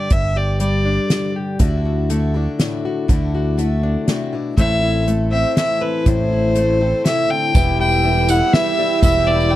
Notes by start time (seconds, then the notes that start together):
Already playing: G2 D4 D5
0.10 G1 G2 E5, kick, closed hi-hat
0.36 G4 D5
0.60 G3 D5, closed hi-hat
0.85 D4
1.10 D3, snare, closed hi-hat
1.36 G4
1.59 D2 D3 A3 D4 E4 F#4, kick, closed hi-hat
1.85 F#4
2.09 A3 D4 E4 F#4, closed hi-hat
2.34 D4 E4 F#4
2.59 A2 A3 D4 E4 F#4, snare, closed hi-hat
2.85 F#4
3.08 D2 D3 A3 D4 E4 F#4, kick, closed hi-hat
3.35 F#4
3.57 A3 D4 E4 F#4, closed hi-hat
3.83 D4
4.08 C3 A3 D4 E4 F#4, snare, closed hi-hat
4.33 B2 D4 E4 F#4
4.57 A1 A2 A3 C4 E4 A4 C5 E5, kick, closed hi-hat
4.83 E4
5.07 A3 C4 E4 A4, closed hi-hat
5.32 C4 E5
5.56 E3 A3 C4 E4 A4 E5, snare, closed hi-hat
5.81 C4 E4 A4 B4
6.06 A1 A2 A3 C4 E4 A4 C5, kick, closed hi-hat
6.32 E4
6.55 A3 C4 E4 A4, closed hi-hat
6.81 C4 E4 A4
7.05 C3 A3 C4 E4 A4 E5, snare, closed hi-hat
7.29 D3 C4 E4 A4 G5
7.54 E1 E2 B2 E3 G3 B3 E4 G4 B4 E5 G5 E6, kick, ride, tambourine
7.79 G3 B3 E4 B4 E5 G5, ride
7.92 tambourine
8.03 E3 G3 B3 E4 G4 B4 E5, ride
8.28 E3 G3 B3 E4 G4 B4 E5 F#5, tambourine
8.53 E3 G3 B3 E4 G4 B4 E5, snare, ride
8.78 E3 G3 B3 E4 G4 B4 D5
9.02 E1 E2 B2 E3 G3 B3 E4 G4 B4 E5, kick, ride, tambourine
9.27 G3 B3 E4 B4 D5 E5
9.40 tambourine
9.51 E3 G3 B3 E4 B4 E5 G5, ride